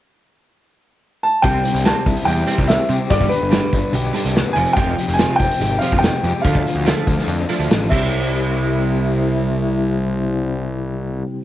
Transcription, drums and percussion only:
1.44 kick, closed hi-hat
1.65 closed hi-hat
1.75 closed hi-hat
1.85 snare, closed hi-hat
2.06 kick, closed hi-hat
2.16 closed hi-hat
2.27 closed hi-hat
2.47 closed hi-hat
2.58 kick
2.69 snare, closed hi-hat
2.90 closed hi-hat
3.10 kick, closed hi-hat
3.21 kick
3.31 closed hi-hat
3.52 snare, closed hi-hat
3.73 kick, closed hi-hat
3.94 closed hi-hat
4.15 closed hi-hat
4.25 closed hi-hat
4.36 snare, closed hi-hat
4.56 closed hi-hat
4.66 closed hi-hat
4.77 kick, closed hi-hat
4.99 closed hi-hat
5.08 closed hi-hat
5.18 snare, closed hi-hat
5.40 kick, closed hi-hat
5.51 closed hi-hat
5.61 closed hi-hat
5.81 closed hi-hat
5.92 kick
6.03 snare, closed hi-hat
6.24 closed hi-hat
6.45 kick, closed hi-hat
6.55 kick
6.67 closed hi-hat
6.87 snare, closed hi-hat
7.07 kick, closed hi-hat
7.19 snare
7.28 closed hi-hat
7.49 closed hi-hat
7.60 closed hi-hat
7.70 snare, closed hi-hat
7.92 kick, crash

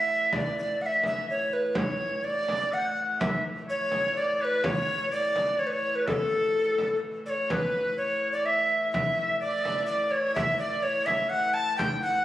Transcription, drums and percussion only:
0.33 frame drum
0.80 frame drum
1.03 frame drum
1.75 frame drum
2.24 frame drum
2.49 frame drum
3.21 frame drum
3.69 frame drum
3.92 frame drum
4.64 frame drum
5.12 frame drum
5.36 frame drum
6.07 frame drum
6.55 frame drum
6.78 frame drum
7.02 frame drum
7.26 frame drum
7.50 frame drum
8.94 frame drum
9.65 frame drum
10.36 frame drum
11.07 frame drum
11.79 frame drum
12.03 frame drum

